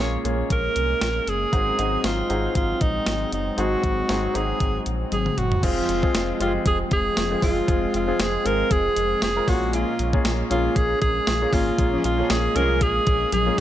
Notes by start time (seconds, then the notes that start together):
Already playing: A#2 G#3 A#3 C#4 A#4 C#5
0.00 A#1 A#3 C#4 F4 G#4
0.24 A#1 A#3 C#4 F4 G#4, closed hi-hat
0.50 A#1 A#4, kick, closed hi-hat
0.76 C2, closed hi-hat
1.01 A#1, snare, closed hi-hat
1.27 F#1 G#4, closed hi-hat
1.52 G#1 G#2 F#3 G#3 C4 D#4 F#4 G#4, kick, closed hi-hat
1.78 G#1 C4 D#4 F#4 G#4, closed hi-hat
2.04 G#1 F4, snare, closed hi-hat
2.29 G#1 C4 D#4 F#4 G#4, closed hi-hat
2.55 G#1 F4, kick, closed hi-hat
2.81 A#1 D#4, kick, closed hi-hat
3.06 G#1, snare, closed hi-hat
3.32 F#1 D#4, closed hi-hat
3.57 G#1 G#2 C4 D#4 F#4 G#4, closed hi-hat
3.84 G#1, kick, closed hi-hat
4.08 G#1 C4 D#4 F#4 G#4, snare, closed hi-hat
4.34 G#1 C4 D#4 F#4 G#4, closed hi-hat
4.60 G#1, kick, closed hi-hat
4.86 A#1, closed hi-hat
5.12 G#1 G#4, closed hi-hat, high tom
5.26 mid tom
5.38 F#1 F#4, closed hi-hat, mid tom
5.52 floor tom
5.62 F1 F3 G#3 C4 F4 G#4, kick, closed hi-hat, crash
5.89 F1, closed hi-hat
6.02 G#3 C4 F4 G#4, kick
6.15 F1, snare, closed hi-hat, tambourine
6.40 F#1 G#3 C4 F4 G4, closed hi-hat
6.47 G#4
6.66 F1 G#4, kick, closed hi-hat
6.91 F1 G#4, kick, closed hi-hat
7.17 F1, snare, closed hi-hat, tambourine
7.30 G#3 C4 F4 G#4
7.42 F#1 G#3 C4 F4 G#4, kick, open hi-hat
7.67 F1 G#3 C4 F4 G#4, kick, closed hi-hat
7.94 F1 F4, closed hi-hat
8.07 G#3 C4 F4 G#4
8.19 F1 G#4, snare, closed hi-hat, tambourine
8.44 G#1 G#3 C4 F4 G#4 A#4, closed hi-hat
8.71 F1 G#4, kick, closed hi-hat
8.96 F1, closed hi-hat
9.22 F1 G#4, snare, closed hi-hat, tambourine
9.36 G#3 C4 F4 A#4
9.47 A#1 A#2 G#3 A#3 C#4 F4 F#4 G#4, kick, open hi-hat
9.73 F4, closed hi-hat
9.99 A#1, closed hi-hat
10.13 A#3 C#4 F4 G#4, kick
10.25 A#1, snare, closed hi-hat, tambourine
10.50 A#1 A#3 C#4 F4 G#4, closed hi-hat
10.76 A#1 G#4, kick, closed hi-hat
11.02 A#1 G#4, kick, closed hi-hat
11.27 A#1, snare, closed hi-hat, tambourine
11.41 A#3 C#4 F4 G#4
11.53 G#1 A#2 A#3 C#4 F4 G#4, kick, open hi-hat
11.78 A#1 A#3 C#4 F4 G#4, kick, closed hi-hat
11.93 F3 C#4 G#4
12.04 A#1 F4, closed hi-hat
12.18 F3 A#3 C#4 F4 G#4
12.30 A#1 G#4, snare, closed hi-hat, tambourine
12.55 C2 F3 A#3 C#4 F4 G#4 A#4, closed hi-hat
12.81 A#1 G#4, kick, closed hi-hat
13.07 A#1, kick, closed hi-hat
13.32 A#1 G#4, closed hi-hat, high tom
13.46 A#3 C#4 F4 G#4
13.57 A#3